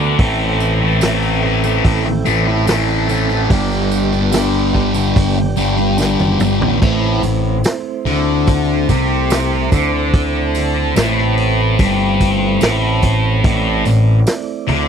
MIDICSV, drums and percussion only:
0, 0, Header, 1, 2, 480
1, 0, Start_track
1, 0, Key_signature, 0, "minor"
1, 0, Tempo, 827586
1, 111, Time_signature, 4, 2, 24, 8
1, 8632, End_track
2, 0, Start_track
2, 0, Title_t, "Drums"
2, 110, Note_on_c, 9, 36, 118
2, 110, Note_on_c, 9, 46, 58
2, 168, Note_off_c, 9, 36, 0
2, 168, Note_off_c, 9, 46, 0
2, 350, Note_on_c, 9, 54, 81
2, 408, Note_off_c, 9, 54, 0
2, 587, Note_on_c, 9, 54, 102
2, 592, Note_on_c, 9, 46, 60
2, 598, Note_on_c, 9, 38, 107
2, 645, Note_off_c, 9, 54, 0
2, 650, Note_off_c, 9, 46, 0
2, 656, Note_off_c, 9, 38, 0
2, 711, Note_on_c, 9, 54, 30
2, 769, Note_off_c, 9, 54, 0
2, 949, Note_on_c, 9, 54, 76
2, 1007, Note_off_c, 9, 54, 0
2, 1071, Note_on_c, 9, 36, 105
2, 1072, Note_on_c, 9, 46, 56
2, 1129, Note_off_c, 9, 36, 0
2, 1130, Note_off_c, 9, 46, 0
2, 1309, Note_on_c, 9, 54, 66
2, 1367, Note_off_c, 9, 54, 0
2, 1551, Note_on_c, 9, 54, 97
2, 1554, Note_on_c, 9, 46, 54
2, 1560, Note_on_c, 9, 38, 107
2, 1609, Note_off_c, 9, 54, 0
2, 1612, Note_off_c, 9, 46, 0
2, 1618, Note_off_c, 9, 38, 0
2, 1671, Note_on_c, 9, 54, 26
2, 1729, Note_off_c, 9, 54, 0
2, 1793, Note_on_c, 9, 54, 70
2, 1851, Note_off_c, 9, 54, 0
2, 1911, Note_on_c, 9, 54, 28
2, 1969, Note_off_c, 9, 54, 0
2, 2030, Note_on_c, 9, 46, 59
2, 2031, Note_on_c, 9, 36, 110
2, 2034, Note_on_c, 9, 54, 25
2, 2088, Note_off_c, 9, 46, 0
2, 2089, Note_off_c, 9, 36, 0
2, 2092, Note_off_c, 9, 54, 0
2, 2154, Note_on_c, 9, 54, 27
2, 2212, Note_off_c, 9, 54, 0
2, 2271, Note_on_c, 9, 54, 73
2, 2329, Note_off_c, 9, 54, 0
2, 2395, Note_on_c, 9, 54, 27
2, 2453, Note_off_c, 9, 54, 0
2, 2508, Note_on_c, 9, 54, 100
2, 2512, Note_on_c, 9, 46, 57
2, 2518, Note_on_c, 9, 38, 107
2, 2566, Note_off_c, 9, 54, 0
2, 2570, Note_off_c, 9, 46, 0
2, 2576, Note_off_c, 9, 38, 0
2, 2628, Note_on_c, 9, 54, 28
2, 2686, Note_off_c, 9, 54, 0
2, 2753, Note_on_c, 9, 36, 71
2, 2811, Note_off_c, 9, 36, 0
2, 2867, Note_on_c, 9, 54, 73
2, 2925, Note_off_c, 9, 54, 0
2, 2991, Note_on_c, 9, 54, 26
2, 2994, Note_on_c, 9, 36, 112
2, 2996, Note_on_c, 9, 46, 63
2, 3049, Note_off_c, 9, 54, 0
2, 3052, Note_off_c, 9, 36, 0
2, 3054, Note_off_c, 9, 46, 0
2, 3228, Note_on_c, 9, 54, 62
2, 3286, Note_off_c, 9, 54, 0
2, 3348, Note_on_c, 9, 54, 23
2, 3406, Note_off_c, 9, 54, 0
2, 3468, Note_on_c, 9, 54, 92
2, 3483, Note_on_c, 9, 38, 63
2, 3526, Note_off_c, 9, 54, 0
2, 3541, Note_off_c, 9, 38, 0
2, 3591, Note_on_c, 9, 54, 27
2, 3597, Note_on_c, 9, 48, 66
2, 3649, Note_off_c, 9, 54, 0
2, 3655, Note_off_c, 9, 48, 0
2, 3712, Note_on_c, 9, 54, 75
2, 3716, Note_on_c, 9, 45, 82
2, 3770, Note_off_c, 9, 54, 0
2, 3774, Note_off_c, 9, 45, 0
2, 3838, Note_on_c, 9, 43, 85
2, 3896, Note_off_c, 9, 43, 0
2, 3955, Note_on_c, 9, 36, 115
2, 3958, Note_on_c, 9, 49, 103
2, 4013, Note_off_c, 9, 36, 0
2, 4016, Note_off_c, 9, 49, 0
2, 4194, Note_on_c, 9, 54, 71
2, 4195, Note_on_c, 9, 46, 58
2, 4252, Note_off_c, 9, 54, 0
2, 4253, Note_off_c, 9, 46, 0
2, 4432, Note_on_c, 9, 54, 91
2, 4434, Note_on_c, 9, 46, 80
2, 4440, Note_on_c, 9, 38, 115
2, 4490, Note_off_c, 9, 54, 0
2, 4492, Note_off_c, 9, 46, 0
2, 4498, Note_off_c, 9, 38, 0
2, 4676, Note_on_c, 9, 46, 52
2, 4734, Note_off_c, 9, 46, 0
2, 4913, Note_on_c, 9, 54, 67
2, 4916, Note_on_c, 9, 36, 117
2, 4916, Note_on_c, 9, 46, 74
2, 4971, Note_off_c, 9, 54, 0
2, 4974, Note_off_c, 9, 36, 0
2, 4974, Note_off_c, 9, 46, 0
2, 5156, Note_on_c, 9, 54, 66
2, 5157, Note_on_c, 9, 36, 77
2, 5158, Note_on_c, 9, 46, 56
2, 5214, Note_off_c, 9, 54, 0
2, 5215, Note_off_c, 9, 36, 0
2, 5216, Note_off_c, 9, 46, 0
2, 5396, Note_on_c, 9, 54, 110
2, 5398, Note_on_c, 9, 46, 81
2, 5404, Note_on_c, 9, 38, 106
2, 5454, Note_off_c, 9, 54, 0
2, 5456, Note_off_c, 9, 46, 0
2, 5462, Note_off_c, 9, 38, 0
2, 5637, Note_on_c, 9, 54, 82
2, 5639, Note_on_c, 9, 36, 73
2, 5639, Note_on_c, 9, 46, 51
2, 5695, Note_off_c, 9, 54, 0
2, 5697, Note_off_c, 9, 36, 0
2, 5697, Note_off_c, 9, 46, 0
2, 5879, Note_on_c, 9, 36, 118
2, 5879, Note_on_c, 9, 46, 75
2, 5937, Note_off_c, 9, 36, 0
2, 5937, Note_off_c, 9, 46, 0
2, 6117, Note_on_c, 9, 54, 78
2, 6122, Note_on_c, 9, 46, 60
2, 6128, Note_on_c, 9, 38, 35
2, 6175, Note_off_c, 9, 54, 0
2, 6180, Note_off_c, 9, 46, 0
2, 6186, Note_off_c, 9, 38, 0
2, 6358, Note_on_c, 9, 46, 71
2, 6358, Note_on_c, 9, 54, 103
2, 6364, Note_on_c, 9, 38, 110
2, 6416, Note_off_c, 9, 46, 0
2, 6416, Note_off_c, 9, 54, 0
2, 6422, Note_off_c, 9, 38, 0
2, 6484, Note_on_c, 9, 38, 29
2, 6542, Note_off_c, 9, 38, 0
2, 6597, Note_on_c, 9, 46, 55
2, 6655, Note_off_c, 9, 46, 0
2, 6838, Note_on_c, 9, 54, 64
2, 6839, Note_on_c, 9, 36, 117
2, 6839, Note_on_c, 9, 46, 84
2, 6896, Note_off_c, 9, 54, 0
2, 6897, Note_off_c, 9, 36, 0
2, 6897, Note_off_c, 9, 46, 0
2, 7078, Note_on_c, 9, 46, 64
2, 7079, Note_on_c, 9, 36, 76
2, 7079, Note_on_c, 9, 54, 61
2, 7136, Note_off_c, 9, 46, 0
2, 7137, Note_off_c, 9, 36, 0
2, 7137, Note_off_c, 9, 54, 0
2, 7313, Note_on_c, 9, 54, 90
2, 7319, Note_on_c, 9, 46, 87
2, 7325, Note_on_c, 9, 38, 120
2, 7371, Note_off_c, 9, 54, 0
2, 7377, Note_off_c, 9, 46, 0
2, 7383, Note_off_c, 9, 38, 0
2, 7554, Note_on_c, 9, 54, 67
2, 7555, Note_on_c, 9, 46, 61
2, 7557, Note_on_c, 9, 36, 80
2, 7612, Note_off_c, 9, 54, 0
2, 7613, Note_off_c, 9, 46, 0
2, 7615, Note_off_c, 9, 36, 0
2, 7795, Note_on_c, 9, 46, 81
2, 7797, Note_on_c, 9, 36, 114
2, 7853, Note_off_c, 9, 46, 0
2, 7855, Note_off_c, 9, 36, 0
2, 8034, Note_on_c, 9, 46, 60
2, 8036, Note_on_c, 9, 54, 72
2, 8092, Note_off_c, 9, 46, 0
2, 8094, Note_off_c, 9, 54, 0
2, 8274, Note_on_c, 9, 46, 77
2, 8275, Note_on_c, 9, 54, 96
2, 8280, Note_on_c, 9, 38, 118
2, 8332, Note_off_c, 9, 46, 0
2, 8333, Note_off_c, 9, 54, 0
2, 8338, Note_off_c, 9, 38, 0
2, 8515, Note_on_c, 9, 46, 55
2, 8573, Note_off_c, 9, 46, 0
2, 8632, End_track
0, 0, End_of_file